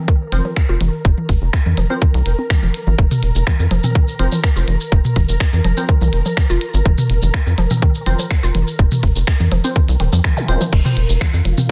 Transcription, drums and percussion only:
0.08 kick
0.32 closed hi-hat, high tom
0.56 finger snap, kick
0.81 closed hi-hat, high tom
1.05 kick
1.18 high tom
1.29 kick, closed hi-hat
1.53 finger snap, kick
1.66 high tom
1.77 closed hi-hat
2.02 kick, high tom
2.14 closed hi-hat
2.26 closed hi-hat
2.50 finger snap, kick, high tom
2.74 closed hi-hat
2.87 high tom
2.99 kick
3.11 mid tom, shaker
3.23 closed hi-hat
3.35 shaker
3.47 finger snap, kick, high tom
3.60 shaker
3.71 closed hi-hat
3.84 mid tom, high tom, shaker
3.95 kick
4.08 shaker
4.19 closed hi-hat
4.32 high tom, shaker
4.44 finger snap, kick
4.56 shaker
4.68 closed hi-hat, high tom
4.80 shaker
4.92 kick
5.05 mid tom, shaker
5.16 kick, closed hi-hat, high tom
5.29 shaker
5.40 finger snap, kick
5.53 high tom, shaker
5.65 closed hi-hat
5.77 shaker
5.89 kick
6.01 high tom, shaker
6.13 closed hi-hat
6.26 shaker
6.37 finger snap, kick, high tom
6.50 shaker
6.61 closed hi-hat
6.74 shaker
6.85 kick, high tom
6.98 mid tom, shaker
7.10 closed hi-hat
7.22 high tom, shaker
7.34 finger snap, kick
7.46 shaker
7.58 closed hi-hat
7.71 mid tom, high tom, shaker
7.82 kick
7.95 shaker
8.06 closed hi-hat, high tom
8.19 shaker
8.31 finger snap, kick
8.43 shaker
8.55 closed hi-hat, high tom
8.67 shaker
8.79 kick
8.92 mid tom, high tom, shaker
9.03 kick, closed hi-hat
9.16 shaker
9.27 finger snap, kick
9.40 high tom, shaker
9.52 closed hi-hat
9.64 shaker
9.76 kick, high tom
9.88 closed hi-hat, shaker
10.00 closed hi-hat
10.13 shaker
10.24 finger snap, kick, high tom
10.37 shaker
10.48 closed hi-hat
10.61 high tom, shaker
10.73 kick, high tom, crash
10.85 mid tom, shaker
10.97 closed hi-hat
11.10 shaker
11.21 finger snap, kick, high tom
11.34 shaker
11.45 closed hi-hat
11.58 mid tom, high tom, shaker

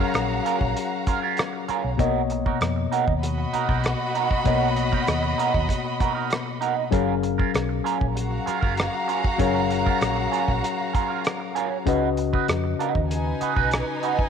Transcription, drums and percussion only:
0.14 cross-stick, closed hi-hat
0.46 closed hi-hat
0.61 kick
0.77 closed hi-hat
1.07 kick, cross-stick, closed hi-hat
1.37 cross-stick, closed hi-hat
1.69 closed hi-hat
1.99 kick, closed hi-hat
2.30 closed hi-hat
2.46 kick
2.61 cross-stick, closed hi-hat
2.93 closed hi-hat
3.08 kick
3.23 closed hi-hat
3.54 closed hi-hat
3.69 kick
3.84 cross-stick, closed hi-hat
4.15 closed hi-hat
4.31 kick
4.45 kick, closed hi-hat
4.76 closed hi-hat
4.93 kick
5.07 cross-stick, closed hi-hat
5.39 closed hi-hat
5.54 kick
5.69 kick, closed hi-hat
6.00 kick, cross-stick, closed hi-hat
6.30 cross-stick, closed hi-hat
6.62 closed hi-hat
6.92 kick, closed hi-hat
7.23 closed hi-hat
7.39 kick
7.54 cross-stick, closed hi-hat
7.86 closed hi-hat
8.01 kick
8.17 closed hi-hat
8.47 cross-stick, closed hi-hat
8.63 kick
8.77 cross-stick, closed hi-hat
9.09 closed hi-hat
9.24 kick
9.39 kick, closed hi-hat
9.71 closed hi-hat
9.87 kick
10.01 cross-stick, closed hi-hat
10.33 closed hi-hat
10.48 kick
10.64 closed hi-hat
10.95 kick, closed hi-hat
11.24 cross-stick, closed hi-hat
11.56 closed hi-hat
11.87 kick, closed hi-hat
12.17 closed hi-hat
12.34 kick
12.48 cross-stick, closed hi-hat
12.80 closed hi-hat
12.95 kick
13.11 closed hi-hat
13.41 closed hi-hat
13.57 kick
13.71 cross-stick, closed hi-hat
14.03 closed hi-hat
14.19 kick

